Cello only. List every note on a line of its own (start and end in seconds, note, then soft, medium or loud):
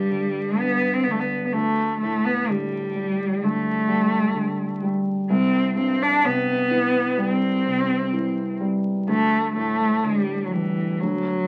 0.00 0.60 G3 medium
0.59 0.95 B3 medium
0.94 1.05 C4 medium
1.04 1.13 B3 medium
1.11 1.21 A3 medium
1.20 1.29 B3 medium
1.45 1.55 B3 soft
1.53 2.00 A3 medium
2.01 2.27 A3 medium
2.25 2.52 B3 medium
2.50 3.45 G3 medium
3.44 4.83 A3 medium
5.31 5.74 C4 medium
5.78 6.04 C4 medium
6.03 6.27 D4 medium
6.26 7.21 B3 medium
7.20 8.60 C4 medium
9.10 9.53 A3 medium
9.57 10.06 A3 medium
10.04 10.48 G3 medium
10.47 10.54 F#3 soft
10.52 11.02 E3 medium
11.00 11.47 F#3 medium